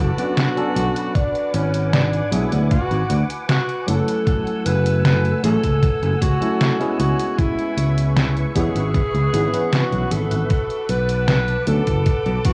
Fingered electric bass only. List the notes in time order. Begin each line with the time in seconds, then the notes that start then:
0.00 F#1
0.76 B1
1.54 G#1
2.32 B1
2.52 D2
2.91 G#1
3.10 D2
3.88 F#1
4.66 F#1
5.44 A1
5.64 C#2
5.83 muted fingered electric bass stroke
6.02 F#1
6.22 C#2
7.00 C#2
7.77 C#2
8.55 E2
8.75 G#1
9.14 C#2
9.33 G#1
9.92 B1
10.11 G#1
10.31 G#1
10.89 B1
11.67 D2
11.87 F#1
12.06 muted fingered electric bass stroke
12.26 B1
12.45 F#1